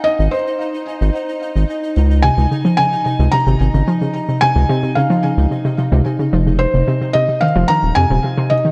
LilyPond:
<<
  \new Staff \with { instrumentName = "Felt piano" } { \time 4/4 \key des \major \tempo 4 = 110 ees''8 c''2. r8 | aes''4 aes''4 bes''2 | aes''4 f''4. r4. | c''4 ees''8 f''8 bes''8 aes''4 ees''8 | }
  \new Staff \with { instrumentName = "Synth texture" } { \time 4/4 \key des \major <ees' ees''>1~ | <ees' ees''>1~ | <ees' ees''>1~ | <ees' ees''>1 | }
  \new Staff \with { instrumentName = "Synth arpeggio sound" } { \clef bass \time 4/4 \key des \major r1 | c16 c16 des16 f16 des16 r16 c16 c16 c16 c16 c16 des16 f16 des16 r16 c16 | c16 c16 c16 c16 des16 f16 des16 r16 c16 c16 c16 c16 c16 des16 f16 des16 | r16 c16 c16 c16 c16 c16 ees16 f16 ees16 r16 c16 c16 c16 c16 c16 ees16 | }
  \new Staff \with { instrumentName = "Analog synth bass" } { \clef bass \time 4/4 \key des \major r16 aes,,16 r4 r16 aes,,16 r8. aes,,16 r8 des,8 | r16 des,16 r4 r16 des,16 r16 aes,,16 aes,,16 aes,,16 r4 | r16 des,16 r4 r16 des,16 r8. des,16 r8 f,,8 | r16 f,,16 r4 r16 f,,16 r16 ees,,16 f,16 ees,,16 r4 | }
>>